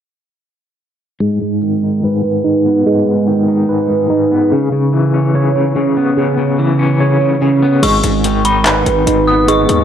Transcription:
1.20 G#2 G#3
1.41 G#2
1.63 D#3
1.83 D#4
2.03 G#2 B4
2.24 G#2
2.44 G#2 D#4
2.66 B3
2.86 G#2 G#3
3.07 G#2
3.28 D#3
3.48 D#4
3.69 G#2 B4
3.90 G#2
4.10 G#2 D#4
4.31 B3
4.52 C#3
4.72 C#3
4.93 E3
5.14 C#4
5.35 C#3 C#5
5.55 C#3
5.76 C#3 C#4
5.97 B3
6.17 C#3
6.38 C#3
6.59 E3
6.79 C#4
7.00 C#3 C#5
7.21 C#3
7.41 C#3 C#4
7.63 B3
7.82 G#1 G#2 G#3 C#6, closed hi-hat, crash
8.03 G#1 G#2, closed hi-hat
8.24 D#3, closed hi-hat
8.45 D#4 B5, closed hi-hat
8.66 G#2 B4, clap, closed hi-hat
8.86 G#1 G#2, closed hi-hat
9.06 G#1 G#2 D#4, closed hi-hat
9.27 B3 D#6
9.48 G#2 G#3 C#6, closed hi-hat
9.69 D#2 G#2, closed hi-hat

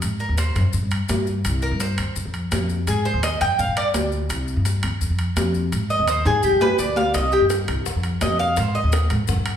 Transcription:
0.02 G#2, high timbale, maracas
0.20 A#4, maracas
0.29 D#2
0.38 C5, high timbale, low timbale, maracas
0.55 F#2, high timbale, maracas
0.73 G2, maracas
0.82 G2
0.91 high timbale, maracas
1.09 G2, high timbale, low timbale, maracas
1.27 maracas
1.45 C2, high timbale, maracas
1.62 A#4, maracas
1.71 G2
1.80 C5, high timbale, low timbale, maracas
1.98 D#2, high timbale, maracas
2.16 F2, maracas
2.25 F2
2.34 high timbale, maracas
2.51 F2, high timbale, low timbale, maracas
2.69 maracas
2.87 G#2 G#4, high timbale, maracas
3.05 C5, maracas
3.14 D#2
3.23 D#5, high timbale, low timbale, maracas
3.41 F#2 G5, high timbale, maracas
3.59 G2 F5, maracas
3.68 G2
3.77 D5, high timbale, maracas
3.94 D2, high timbale, low timbale, maracas
4.12 maracas
4.29 C2, high timbale, maracas
4.48 maracas
4.56 G2
4.65 high timbale, low timbale, maracas
4.83 D#2, high timbale, maracas
5.01 F2, maracas
5.10 F2
5.19 high timbale, maracas
5.36 F2, high timbale, low timbale, maracas
5.54 maracas
5.72 G#2, high timbale, maracas
5.90 D#5, maracas
5.99 D#2
6.08 C5, high timbale, low timbale, maracas
6.26 G#2 G#4, high timbale, maracas
6.43 G2 G4, maracas
6.52 G2
6.61 B4, low timbale, maracas
6.78 D2 D5, maracas
6.96 F5, low timbale, maracas
7.14 C2 D#5, high bongo, high timbale, maracas
7.32 G4, high bongo, maracas
7.41 G2
7.50 high bongo, high timbale, low timbale, maracas
7.68 C2, high bongo, high timbale, maracas
7.86 F2, high bongo, maracas
7.95 F2
8.03 high timbale, maracas
8.21 F2 D#5, high bongo, low bongo, high timbale, low timbale, maracas
8.39 F5, high bongo, maracas
8.56 G#2 C5, high bongo, high timbale, maracas
8.75 D#5, high bongo, maracas
8.83 D#2
8.92 high bongo, high timbale, low timbale, maracas
9.10 G#2, high bongo, high timbale, maracas
9.27 G2, high bongo, maracas
9.37 G2
9.46 high timbale, maracas

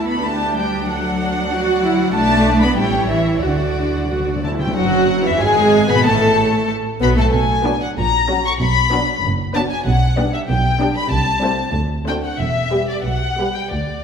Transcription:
Already playing: D2 E4 F#4
0.08 B3 B5
0.23 A3 D4 G4 A5
0.56 G3 G5
0.88 F#3 A4 F#5
1.50 F#4 D5
1.83 E4
2.13 B1 A3 D4 D5 A5
2.61 B3 B5
2.77 A1 G3 E4 C#5 G5
3.08 E3 E5
3.42 D2 D3 F#4 D5 F#5
3.51 D3
3.58 D3
3.66 D3
3.74 D3
3.82 D3
3.90 D3
3.98 D3
4.05 D3
4.09 D3 F#4
4.20 D3
4.28 D3
4.36 D3
4.43 D3 E4 A5
4.52 D3
4.59 D3 G5
4.67 D3
4.75 F#1 F#2 F#3 F#4 F#5
5.24 E2 E3 E4 E5
5.40 G#1 G#2 G#3 G#4 G#5
5.89 B2 B3 B4 B5
6.05 A1 A2 A3 A4 A5
7.00 B1 B2 B3 B4 B5
7.17 A2 A3 A4 A5
7.32 B1 B2 G#5
7.64 F#3 B3 D4 F#4 B4
7.82 F#5
7.97 A#1 A#2 A#5
8.28 F#3 C#4 F#4 C#5
8.46 C#6
8.59 B1 B2 B5
8.91 F#3 B3 D4 F#4 B4
9.23 F#1 F#2
9.53 F#3 B3 D4 F#4 B4 A5
9.71 G#5
9.85 B1 B2 F#5
10.16 G3 B3 D4 G4 D5
10.33 E5
10.47 B1 B2 G5
10.80 G3 B3 D4 G4 D5
10.97 B5
11.10 C2 C3 A5
11.40 G3 A3 C4 E4 G4 C5
11.74 D2
12.05 A3 C4 D4 F#4 C5 G5
12.25 F#5
12.38 E1 E2 E5
12.71 G3 B3 G4 B4
12.89 D5
13.04 B1 B2 F#5
13.37 G3 B3 G4 B4
13.57 G5
13.71 D2 D5

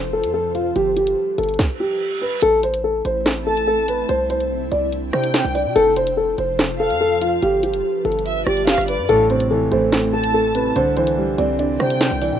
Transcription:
Already playing: F1 F3 F4 A4 C5
0.13 A4
0.24 F2, closed hi-hat
0.34 A4
0.55 F4, closed hi-hat
0.76 G1 G4, closed hi-hat
0.97 G4, closed hi-hat
1.07 closed hi-hat
1.38 G1 A4, closed hi-hat
1.43 closed hi-hat
1.49 closed hi-hat
1.54 closed hi-hat
1.59 kick, snare, reverse cymbal
1.80 G4
2.22 B4
2.42 A1 A3 C4 E4 A4, closed hi-hat
2.63 C5, closed hi-hat
2.74 closed hi-hat
2.84 A4
3.05 A1 C5, closed hi-hat
3.26 snare, closed hi-hat
3.47 A4 A5
3.57 closed hi-hat
3.67 A4
3.88 B4, closed hi-hat
4.09 C2 C3 D4 E4 C5, closed hi-hat
4.30 C5, closed hi-hat
4.40 closed hi-hat
4.51 B1
4.61 C2
4.72 C2 D5, closed hi-hat
4.92 closed hi-hat
5.13 C3 C5 G5, cross-stick
5.24 closed hi-hat
5.34 snare, closed hi-hat
5.44 C2
5.55 D5, open hi-hat
5.65 C3
5.76 F1 F3 F4 A4 C5, closed hi-hat
5.96 C5, closed hi-hat
6.07 closed hi-hat
6.17 A4
6.38 F1 C5, closed hi-hat
6.59 snare, closed hi-hat
6.80 A4 F5
6.90 F2, closed hi-hat
7.01 A4
7.21 F4, closed hi-hat
7.42 G1 G3 D4 G4 B4, closed hi-hat
7.63 G4, closed hi-hat
7.74 closed hi-hat
8.05 G1 A4, closed hi-hat
8.12 closed hi-hat
8.19 closed hi-hat
8.26 E5, closed hi-hat
8.47 G1 G4 D5, cross-stick
8.57 closed hi-hat
8.67 F1 F5, snare, closed hi-hat
8.74 G1, cross-stick, closed hi-hat
8.81 closed hi-hat
8.88 B4 D5, closed hi-hat
8.99 G2
9.09 A1 A2 A3 C4 E4 A4, closed hi-hat
9.30 C3 C5, closed hi-hat
9.40 closed hi-hat
9.51 E3 A4
9.72 A1 A3 C5, closed hi-hat
9.92 C4, snare, closed hi-hat
10.13 A4 A5
10.24 closed hi-hat
10.34 A4
10.55 C3 B4, closed hi-hat
10.76 C2 C3 D3 C4 D4 C5, closed hi-hat
10.97 E3 C5, closed hi-hat
11.07 closed hi-hat
11.17 B1 G3
11.28 C2
11.38 C2 C4 D5, closed hi-hat
11.59 D4, closed hi-hat
11.80 C3 C5 G5, cross-stick
11.90 closed hi-hat
12.01 snare, closed hi-hat
12.11 C2
12.22 E3 D5, open hi-hat
12.32 C3

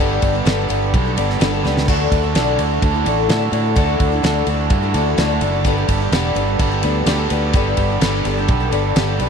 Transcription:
Already playing: B3 G4 A4
0.00 G1 G3 B3 D4 G4 A4 B4
0.21 G1 B3 D4 B4, kick, ride
0.33 D4 G4 A4
0.45 G1 G3 B3 D4 G4 A4 B4, snare, ride
0.69 G1 B3 D4 G4 A4, ride
0.93 B1 G3 B3 D4 B4, kick, ride
1.05 D4 G4 A4
1.16 G1 B3 D4 G4 A4 B4, ride
1.30 snare
1.40 G1 G3 B3 D4 G4 A4 B4, snare, ride
1.54 D4 G4 A4
1.64 C#2 B3 D4 G4 A4 B4, snare
1.78 snare
1.87 D2 D3 F#3 A3 D4 E4 F#4 A4, kick, crash
2.11 D2 D4 F#4 A4, kick, ride
2.23 A3 D4 E4 A4
2.34 B1 D3 F#3 A3 D4 E4 F#4 A4, snare, ride
2.58 D2 A3 D4 E4 A4, ride
2.82 D2 D3 D4 F#4 A4, kick, ride
2.94 A3 D4 E4 A4
3.05 A1 A3 D4 E4 F#4 A4, ride
3.29 A2 D3 F#3 A3 D4 E4 F#4 A4, snare, ride
3.40 A3 D4 E4 A4
3.52 A2 A3 D4 E4 F#4 A4, ride
3.75 D2 D3 F#3 A3 D4 E4 F#4 A4, kick, ride
3.99 D2 D4 F#4 A4, kick, ride
4.12 A3 D4 E4 A4
4.23 D2 D3 F#3 A3 D4 E4 F#4 A4, snare, ride
4.47 D2 A3 D4 E4 A4, ride
4.70 G2 D3 D4 F#4 A4, kick, ride
4.82 A3 D4 E4 A4
4.94 D2 A3 D4 E4 F#4 A4, ride
5.18 D2 D3 F#3 A3 D4 E4 F#4 A4, snare, ride
5.30 A3 D4 E4 A4
5.41 F#1 A3 D4 E4 F#4 A4, ride
5.64 G1 G3 B3 D4 G4 A4 B4, kick, ride
5.77 D4 G4 A4
5.87 G1 B3 D4 B4, kick, ride
6.00 D4 G4 A4
6.12 E1 G3 B3 D4 G4 A4 B4, snare, ride
6.35 G1 B3 D4 G4 A4, ride
6.59 G1 G3 B3 D4 B4, kick, ride
6.72 D4 G4 A4
6.82 D2 B3 D4 G4 A4 B4, ride
7.06 D2 G3 B3 D4 G4 A4 B4, snare, ride
7.19 D4 G4 A4
7.29 D2 B3 D4 G4 A4 B4, ride
7.53 G1 G3 B3 D4 G4 A4 B4, kick, ride
7.77 G1 B3 D4 B4, kick, ride
7.90 D4 G4 A4
8.01 G1 G3 B3 D4 G4 A4 B4, snare, ride
8.25 G1 B3 D4 G4 A4, ride
8.37 D4 G4 A4
8.48 B1 G3 B3 D4 B4, kick, ride
8.60 D4 G4 A4
8.72 G1 B3 D4 G4 A4 B4, ride
8.96 G1 G3 B3 D4 G4 A4 B4, snare, ride
9.08 D4 G4 A4
9.19 B1 B3 D4 G4 A4 B4, ride

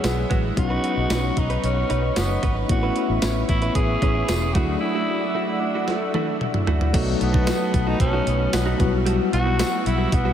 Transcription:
Already playing: F#3 G#3 B3 E4 G#4 F#5 E6
0.03 B1 B3, muted clean electric guitar stroke, snare, closed hi-hat, tambourine
0.16 muted clean electric guitar stroke
0.30 A1 G#3 B3 F#4, kick, closed hi-hat
0.43 G#3 B3 F#4
0.56 B1 F#3 B3 C#4 D#4 F#4 B4 D#5 C#6, muted clean electric guitar stroke, kick, closed hi-hat
0.70 C#4 D#4 B4
0.83 C#4 D#4 B4, closed hi-hat
0.97 B1, muted clean electric guitar stroke
1.10 B1 C#4 D#4 B4, snare, closed hi-hat, tambourine
1.23 muted clean electric guitar stroke
1.37 B1 D#4, muted clean electric guitar stroke, kick, closed hi-hat
1.50 C#4 D#4 B4, closed hi-hat
1.63 B1 C#4, closed hi-hat
1.76 muted clean electric guitar stroke
1.89 B1 C#4 D#4 B4, closed hi-hat
2.03 muted clean electric guitar stroke
2.16 F#1 B3, muted clean electric guitar stroke, snare, closed hi-hat, tambourine
2.29 muted clean electric guitar stroke
2.43 G#1 C#4 D#4 B4, kick, closed hi-hat
2.56 C#4 D#4 B4
2.68 A1 A3 B3 C4 E4 F#4 E5, muted clean electric guitar stroke, kick, closed hi-hat
2.76 C#4
2.83 C#4 E4 B4
2.95 C#4 E4 B4, closed hi-hat
3.09 A1, muted clean electric guitar stroke
3.22 A1 C#4 E4 B4, snare, closed hi-hat, tambourine
3.36 muted clean electric guitar stroke
3.49 A1 E4, muted clean electric guitar stroke, kick, closed hi-hat
3.62 C#4 E4 B4, closed hi-hat
3.75 A1 G#4, kick, closed hi-hat
3.89 muted clean electric guitar stroke
4.02 A1 C#4 E4 B4, kick, closed hi-hat
4.16 muted clean electric guitar stroke
4.28 E1, muted clean electric guitar stroke, snare, closed hi-hat, tambourine
4.42 muted clean electric guitar stroke
4.54 D2 F#3 A3 D4 E4 F#4 D5 F#5 E6, kick, closed hi-hat
4.68 A3 E4 F#4
4.80 E4, muted clean electric guitar stroke
4.95 A3 E4 F#4
5.08 A3 E4 F#4
5.22 muted clean electric guitar stroke
5.34 A3 E4 F#4
5.48 muted clean electric guitar stroke
5.60 D4, muted clean electric guitar stroke
5.75 A3 E4 F#4
5.87 A3, snare
6.01 muted clean electric guitar stroke
6.14 A3 E4 F#4, high tom
6.28 muted clean electric guitar stroke
6.41 muted clean electric guitar stroke, mid tom
6.54 muted clean electric guitar stroke, mid tom
6.67 A3 E4 F#4, floor tom
6.81 A3 E4 F#4, floor tom
6.93 B1 F#3 A3 B3 D#4 F#4 B4 A5 D#6, kick, closed hi-hat, crash
7.20 B1 B3, muted clean electric guitar stroke, closed hi-hat
7.33 A3 D#4 F#4, kick
7.46 A3 D#4 F#4, snare, closed hi-hat, tambourine
7.60 muted clean electric guitar stroke
7.73 B1, muted clean electric guitar stroke, kick, closed hi-hat
7.87 A3 D#4 F#4
8.00 B1 C#4, muted clean electric guitar stroke, kick, closed hi-hat
8.13 A3 D#4 F#4
8.26 B1, muted clean electric guitar stroke, closed hi-hat
8.40 muted clean electric guitar stroke
8.53 B1 B3, muted clean electric guitar stroke, snare, closed hi-hat, tambourine
8.66 A3 D#4 F#4
8.79 B1 F#3 G3 B3 E4 F#4 F#5 E6, muted clean electric guitar stroke, kick, closed hi-hat
8.93 muted clean electric guitar stroke
9.06 G3 B3 F#4, closed hi-hat
9.33 B1 F#4, muted clean electric guitar stroke, closed hi-hat
9.46 G3 B3 F#4
9.59 G3 B3 F#4, snare, closed hi-hat, tambourine
9.72 muted clean electric guitar stroke
9.85 B1 E4, muted clean electric guitar stroke, closed hi-hat
9.98 G3 B3 F#4
10.11 B1 B3, muted clean electric guitar stroke, kick, closed hi-hat
10.25 G3 B3 F#4

